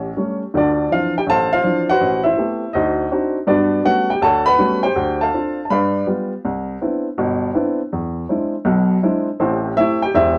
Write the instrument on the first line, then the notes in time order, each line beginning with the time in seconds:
upright piano
Already playing: A1 G4 C#5
0.17 G3 A3 C#4
0.54 D2 D3 D4 F4 A4 D5
0.91 E3 F3 C4 D4 F4 F5
1.17 G4 G5
1.27 A1 A4 C5 F5 A5
1.53 F4 C5 F5
1.64 E3 F3 C4 D4
1.90 F#4 B4 C5 F#5
2.01 A1
2.24 E4 C5 E5
2.37 A3 B3 C4 G4
2.73 D2 D#4 F#4 C5 D#5
3.11 C4 D4 D#4 F#4
3.47 G2 B3 D4 F#4 B4 D5
3.84 G3 A3 B3 C#4 F#4 F#5
4.10 G4 G5
4.22 D2 A4 C#5 F#5 A5
4.46 B4 F#5 B5
4.58 G3 A3 B3 C#4 F#4
4.83 G4 C5 G5
4.96 D2
5.21 A4 F5 A5
5.34 C4 D4 F4
5.65 A5
5.70 G2 B4 D5 F5 B5
6.07 G3 B3 F4
6.45 C2
6.81 B3 C4 D4 E4
7.18 G1 B2
7.55 B3 C4 D4 E4
7.93 E2
8.29 G#3 C4 D4 E4
8.65 B1 B2
9.03 G#3 C4 D4 E4
9.40 A1 A2 C4 E4 G4 C5
9.77 A3 C4 E4 G4 E5
10.02 G4 G5
10.14 E1 E2 E4 G4 C5 E5